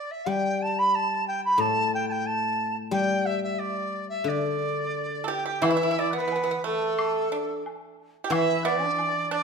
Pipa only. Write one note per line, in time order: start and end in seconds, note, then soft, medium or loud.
5.24 5.44 G4 medium
5.24 5.28 A4 soft
5.46 5.62 G4 medium
5.62 5.69 E4 medium
5.70 5.75 E4 medium
5.77 5.82 E4 medium
5.83 5.90 E4 soft
5.91 5.97 E4 medium
5.99 6.07 E4 medium
6.13 6.19 B3 medium
6.20 6.26 B3 soft
6.28 6.34 B3 soft
6.36 6.42 B3 soft
6.44 6.50 B3 medium
6.51 6.59 B3 soft
6.64 7.28 A3 medium
7.32 7.63 D4 medium
8.24 8.30 G4 medium
8.31 8.62 E4 medium
8.65 9.28 D4 medium
9.31 9.43 D4 medium